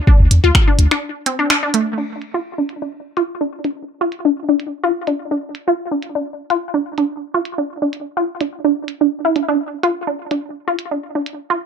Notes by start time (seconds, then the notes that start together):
0.07 D4, kick
0.20 D2
0.31 E2, closed hi-hat
0.44 D2 F4
0.55 finger snap, kick
0.68 D4
0.79 D2, closed hi-hat
0.91 D4, finger snap
1.26 C4, closed hi-hat
1.39 D4
1.50 D4, finger snap
1.63 D4
1.74 A3, closed hi-hat
1.98 D4, crash
2.22 closed hi-hat
2.34 F4
2.58 D4
2.69 closed hi-hat
2.82 D4
3.17 F4, closed hi-hat
3.41 D4
3.64 D4, closed hi-hat
4.01 F4
4.12 closed hi-hat
4.25 D4
4.49 D4
4.60 closed hi-hat
4.84 F4
5.07 D4, closed hi-hat
5.31 D4
5.55 closed hi-hat
5.68 F4
5.91 D4
6.02 closed hi-hat
6.15 D4
6.50 F4, closed hi-hat
6.74 D4
6.98 D4, closed hi-hat
7.34 F4
7.45 closed hi-hat
7.58 D4
7.82 D4
7.93 closed hi-hat
8.17 F4
8.41 D4, closed hi-hat
8.64 D4
8.88 closed hi-hat
9.01 D4
9.25 E4
9.36 D4, closed hi-hat
9.48 D4
9.83 F4, closed hi-hat
10.07 D4
10.31 D4, closed hi-hat
10.68 F4
10.79 closed hi-hat
10.91 D4
11.15 D4
11.26 closed hi-hat
11.50 F4